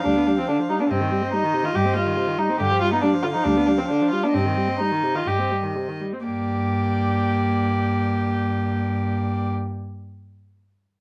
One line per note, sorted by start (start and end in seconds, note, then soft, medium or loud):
0.00 0.26 D4 soft
0.00 0.92 F5 soft
0.06 0.39 D2 soft
0.06 0.18 G3 soft
0.17 0.29 B3 soft
0.27 0.40 G3 soft
0.27 0.31 D4 soft
0.38 0.50 F3 soft
0.38 0.48 C4 soft
0.49 0.61 D3 soft
0.49 0.57 D4 medium
0.59 0.71 F3 soft
0.69 0.81 G3 soft
0.69 0.80 D#4 soft
0.80 0.89 B3 soft
0.80 0.84 D4 soft
0.90 1.24 G2 soft
0.90 1.03 C3 soft
0.90 1.32 C4 soft
0.90 2.62 D#5 soft
1.01 1.13 D#3 soft
1.12 1.24 G3 soft
1.22 1.34 C4 soft
1.33 1.45 G3 soft
1.33 1.66 D#4 medium
1.43 1.55 D#3 soft
1.54 1.65 C3 soft
1.64 1.74 D#3 soft
1.64 1.77 F4 medium
1.75 2.09 G2 soft
1.75 1.87 G3 soft
1.75 1.96 G4 medium
1.85 1.97 C4 soft
1.95 2.08 G3 soft
1.95 2.40 F4 medium
2.06 2.19 D#3 soft
2.17 2.29 C3 soft
2.28 2.40 D#3 soft
2.38 2.50 G3 soft
2.38 2.60 D#4 soft
2.49 2.59 C4 soft
2.60 2.94 G2 soft
2.60 2.72 D3 soft
2.60 2.80 G4 medium
2.60 4.35 F5 soft
2.71 2.83 F3 soft
2.81 2.93 G3 soft
2.81 2.91 F4 medium
2.92 3.04 B3 soft
2.92 3.01 D#4 medium
3.02 3.15 G3 soft
3.02 3.10 D4 medium
3.14 3.25 F3 soft
3.23 3.36 D3 soft
3.23 3.28 F4 soft
3.34 3.46 F3 soft
3.34 3.46 D#4 medium
3.44 3.80 D2 soft
3.44 3.58 G3 soft
3.44 3.66 D4 medium
3.57 3.69 B3 soft
3.66 3.81 G3 soft
3.66 3.71 D4 soft
3.78 3.92 F3 soft
3.78 3.83 C4 soft
3.88 4.03 D3 soft
3.88 4.10 D4 medium
4.01 4.14 F3 soft
4.11 4.25 G3 soft
4.11 4.25 F4 soft
4.24 4.34 B3 soft
4.24 4.36 D4 soft
4.34 4.70 G2 soft
4.34 4.47 C3 soft
4.34 4.79 C4 medium
4.34 6.00 D#5 soft
4.46 4.58 D#3 soft
4.57 4.70 G3 soft
4.68 4.82 C4 soft
4.80 4.93 G3 soft
4.80 5.17 D#4 soft
4.92 5.05 D#3 soft
5.03 5.17 C3 soft
5.15 5.26 D#3 soft
5.15 5.29 F4 medium
5.27 5.65 G2 soft
5.27 5.40 G3 soft
5.27 5.51 G4 soft
5.39 5.53 C4 soft
5.51 5.65 G3 soft
5.63 5.77 D#3 soft
5.76 5.90 C3 soft
5.88 6.02 D#3 soft
6.01 6.15 G3 soft
6.13 6.25 C4 soft
6.26 9.49 G2 soft
6.26 9.49 A#3 soft
6.26 9.49 G4 soft
6.26 9.49 D5 soft